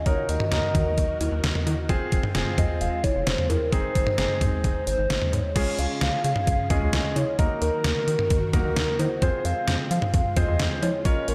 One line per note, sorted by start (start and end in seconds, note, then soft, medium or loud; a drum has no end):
0.06 0.15 D#2 loud
0.06 1.87 D#3 medium
0.06 1.87 D#4 medium
0.06 0.38 D#4 medium
0.06 0.38 F#4 medium
0.06 1.87 F#4 medium
0.06 0.38 A#4 medium
0.06 1.87 A#4 medium
0.06 0.30 C#5 loud
0.06 kick loud
0.06 closed hi-hat medium
0.29 0.38 D#2 loud
0.29 0.74 D#5 loud
0.29 closed hi-hat medium
0.40 mid tom medium
0.52 0.60 D#2 loud
0.52 1.15 D#4 medium
0.52 1.15 F#4 medium
0.52 1.15 A#4 medium
0.52 snare loud
0.52 closed hi-hat medium
0.75 0.83 D#3 medium
0.75 1.17 D#5 medium
0.75 kick medium
0.75 closed hi-hat medium
0.75 mid tom medium
0.98 1.06 D#2 loud
0.98 kick loud
0.98 closed hi-hat medium
1.21 1.29 D#2 loud
1.21 closed hi-hat medium
1.21 cowbell medium
1.32 1.41 D#2 loud
1.44 1.52 D#2 loud
1.44 snare loud
1.44 closed hi-hat medium
1.55 mid tom loud
1.66 1.75 D#3 loud
1.66 closed hi-hat medium
1.66 cowbell medium
1.89 1.98 F1 loud
1.89 5.52 G#3 medium
1.89 5.52 C4 medium
1.89 2.21 C4 medium
1.89 3.71 F4 medium
1.89 2.21 F4 medium
1.89 2.21 G#4 loud
1.89 kick loud
1.89 closed hi-hat medium
2.12 2.21 F1 loud
2.12 kick loud
2.12 closed hi-hat medium
2.23 mid tom medium
2.35 2.44 F1 loud
2.35 2.98 C4 medium
2.35 2.98 F4 medium
2.35 2.98 G#4 loud
2.35 snare loud
2.35 closed hi-hat medium
2.58 2.67 F2 loud
2.58 2.82 D#5 loud
2.58 kick medium
2.58 closed hi-hat medium
2.58 mid tom medium
2.81 2.89 F1 loud
2.81 3.05 F5 loud
2.81 closed hi-hat medium
3.04 3.12 F1 loud
3.04 3.28 C#5 loud
3.04 kick loud
3.04 closed hi-hat medium
3.04 cowbell medium
3.15 3.24 F1 loud
3.27 3.35 F1 loud
3.27 3.51 C5 loud
3.27 snare loud
3.27 closed hi-hat medium
3.38 mid tom loud
3.49 3.58 F2 loud
3.49 3.74 A#4 medium
3.49 closed hi-hat medium
3.49 cowbell medium
3.72 3.81 G#1 loud
3.72 4.04 C4 medium
3.72 5.54 D#4 medium
3.72 4.04 D#4 medium
3.72 4.04 G#4 medium
3.72 4.87 C5 loud
3.72 kick loud
3.72 closed hi-hat medium
3.95 4.04 G#1 loud
3.95 kick loud
3.95 closed hi-hat medium
4.07 mid tom medium
4.18 4.27 G#1 loud
4.18 4.82 C4 medium
4.18 4.82 D#4 medium
4.18 4.82 G#4 medium
4.18 snare loud
4.18 closed hi-hat medium
4.41 4.50 G#2 loud
4.41 kick medium
4.41 closed hi-hat medium
4.41 mid tom medium
4.64 4.73 G#1 loud
4.64 kick loud
4.64 closed hi-hat medium
4.87 4.96 G#1 loud
4.87 5.35 C5 loud
4.87 closed hi-hat medium
4.98 5.07 G#1 loud
5.10 5.19 G#1 loud
5.10 snare loud
5.10 closed hi-hat medium
5.22 mid tom loud
5.33 5.41 G#2 loud
5.33 5.80 C#5 loud
5.33 closed hi-hat medium
5.56 5.64 C#2 loud
5.56 7.37 C#3 medium
5.56 6.19 G#3 medium
5.56 6.19 C#4 medium
5.56 7.37 C#4 medium
5.56 6.19 F4 medium
5.56 7.37 F4 medium
5.56 6.19 G#4 medium
5.56 7.37 G#4 medium
5.56 kick loud
5.56 closed hi-hat medium
5.56 crash loud
5.79 5.87 C#2 loud
5.79 6.01 F5 loud
5.79 closed hi-hat medium
6.01 6.10 C#2 loud
6.01 6.23 F5 loud
6.01 snare loud
6.01 closed hi-hat medium
6.24 6.33 C#3 loud
6.24 6.72 F5 loud
6.24 closed hi-hat medium
6.36 mid tom medium
6.47 6.56 C#2 loud
6.47 kick loud
6.47 closed hi-hat medium
6.70 6.79 C#2 loud
6.70 7.18 G#3 medium
6.70 7.18 C#4 medium
6.70 7.18 F4 medium
6.70 7.18 G#4 medium
6.70 7.18 D#5 loud
6.70 kick loud
6.70 closed hi-hat medium
6.70 mid tom loud
6.82 6.90 C#2 loud
6.93 7.02 C#2 medium
6.93 snare loud
6.93 closed hi-hat medium
7.16 7.25 C#3 loud
7.16 7.40 C#5 loud
7.16 closed hi-hat medium
7.16 cowbell medium
7.39 7.48 D#2 loud
7.39 9.20 D#3 medium
7.39 8.02 A#3 medium
7.39 9.20 D#4 medium
7.39 8.02 D#4 medium
7.39 9.20 F#4 medium
7.39 8.02 F#4 medium
7.39 9.20 A#4 medium
7.39 8.02 A#4 medium
7.39 7.61 D#5 loud
7.39 kick loud
7.39 closed hi-hat medium
7.62 7.70 D#2 loud
7.62 8.49 A#4 loud
7.62 closed hi-hat medium
7.84 7.93 D#2 loud
7.84 snare loud
7.84 closed hi-hat medium
8.07 8.16 D#3 medium
8.07 closed hi-hat medium
8.19 mid tom medium
8.30 8.39 D#2 loud
8.30 kick loud
8.30 closed hi-hat medium
8.53 8.62 D#2 loud
8.53 9.01 A#3 medium
8.53 9.01 D#4 medium
8.53 9.01 F#4 medium
8.53 9.01 A#4 medium
8.53 9.01 A#4 loud
8.53 kick loud
8.53 closed hi-hat medium
8.53 mid tom loud
8.65 8.73 D#2 loud
8.76 8.85 D#2 loud
8.76 snare loud
8.76 closed hi-hat medium
8.99 9.08 D#3 loud
8.99 9.46 C5 loud
8.99 closed hi-hat medium
8.99 cowbell medium
9.22 9.31 F2 loud
9.22 11.03 G#3 medium
9.22 11.03 C4 medium
9.22 9.85 C4 medium
9.22 11.35 F4 medium
9.22 9.85 F4 medium
9.22 9.85 G#4 medium
9.22 9.85 C5 medium
9.22 kick loud
9.22 closed hi-hat medium
9.45 9.54 F2 loud
9.45 9.90 F5 loud
9.45 closed hi-hat medium
9.68 9.76 F2 loud
9.68 snare loud
9.68 closed hi-hat medium
9.91 9.99 F3 loud
9.91 10.12 F5 loud
9.91 closed hi-hat medium
10.02 mid tom medium
10.14 10.22 F2 loud
10.14 10.38 F5 loud
10.14 kick loud
10.14 closed hi-hat medium
10.36 10.45 F2 loud
10.36 10.84 C4 medium
10.36 10.84 F4 medium
10.36 10.84 G#4 medium
10.36 10.84 C5 medium
10.36 10.82 D#5 loud
10.36 kick loud
10.36 closed hi-hat medium
10.36 mid tom loud
10.48 10.57 F2 loud
10.59 10.68 F2 loud
10.59 snare loud
10.59 closed hi-hat medium
10.82 10.91 F3 loud
10.82 11.07 C#5 medium
10.82 closed hi-hat medium
10.82 cowbell medium
11.05 11.14 A#1 loud
11.05 11.35 A#3 medium
11.05 11.35 C#4 medium
11.05 11.35 F4 medium
11.05 11.35 A#4 medium
11.05 11.35 C#5 medium
11.05 11.30 D#5 loud
11.05 kick loud
11.05 closed hi-hat medium
11.28 11.35 A#1 loud
11.28 11.35 A#4 medium
11.28 closed hi-hat medium